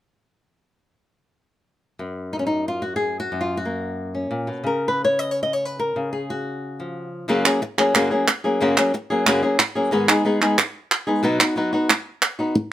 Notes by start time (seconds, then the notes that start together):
1.99 F#2
2.33 D#4
2.39 C#4
2.47 D#4
2.68 F4
2.82 F#4
2.96 G#4
3.20 F#4
3.32 F#2
3.41 F4
3.57 F#4
3.65 A#3
4.15 C#4
4.31 A#2
4.47 B2
4.64 C#3 A#4
4.88 B4
5.04 C#5
5.19 D#5
5.31 C#5
5.43 D#5
5.53 C#5
5.65 B4
5.79 A#4
5.96 C#3
6.13 G#4
6.30 F#4
6.80 F3
7.28 F#2 C#3 F#3 A#3 C#4 G#4
7.45 F#3 A#3 C#4 G#4, clap
7.62 muted nylon-string guitar stroke
7.78 F#3 A#3 C#4 G#4, clap
7.94 F#2 C#3 F#3 A#3 C#4 G#4, clap
8.11 F#3 A#3 C#4 G#4
8.27 muted nylon-string guitar stroke, clap
8.44 F#3 A#3 C#4 G#4
8.61 F#2 C#3 F#3 A#3 C#4 G#4
8.77 F#3 A#3 C#4 G#4, clap
8.94 muted nylon-string guitar stroke
9.10 F#3 A#3 C#4 G#4
9.26 F#2 C#3 F#3 A#3 C#4 G#4, clap
9.43 F#3 A#3 C#4 G#4
9.59 muted nylon-string guitar stroke, clap
9.75 F#3 A#3 C#4 G#4
9.91 G#2 D#3 G#3 B3 D#4 G#4
10.08 G#3 B3 D#4 G#4, clap
10.25 G#3 B3 D#4 G#4
10.41 G#3 B3 D#4 G#4, clap
10.58 muted nylon-string guitar stroke, clap
10.91 clap
11.07 G#3 B3 D#4 G#4
11.23 B2 F#3 B3 D#4 F#4
11.39 B3 D#4 F#4, clap
11.56 F#3 B3 D#4 F#4
11.73 B3 D#4 F#4
11.90 muted nylon-string guitar stroke, clap
12.22 clap
12.39 B3 D#4 F#4
12.55 muted nylon-string guitar stroke